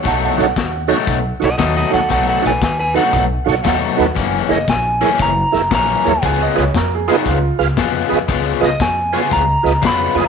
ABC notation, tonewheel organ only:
X:1
M:4/4
L:1/16
Q:"Swing" 1/4=117
K:B
V:1 name="Tonewheel organ"
z2 [DF=Ac] z3 [DFAc] z3 [DFAc] z3 [DFAc] z | z2 [DF=Ac] z3 [DFAB] z3 [DFAc] z3 [DFAB] z | z2 [EGAc] z3 [EGAc] z3 [EGAe] z3 [EGAc] z | z2 [^EGBd] z3 [EGBd] z3 [EGB^e] z3 [EGBd] z |
z2 [^EGBd] z3 [EGBc] z3 [EGBd] z3 [EGBd] z |]